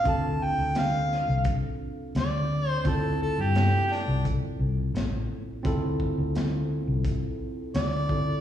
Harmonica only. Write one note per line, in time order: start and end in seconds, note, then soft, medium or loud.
0.08 0.45 A5 medium
0.44 0.76 G5 loud
0.78 1.45 F5 loud
2.19 2.70 D5 loud
2.70 2.90 C5 loud
2.88 3.21 A4 medium
3.22 3.42 A4 medium
3.41 3.94 G4 medium
3.92 4.25 D4 loud
7.76 8.41 D5 loud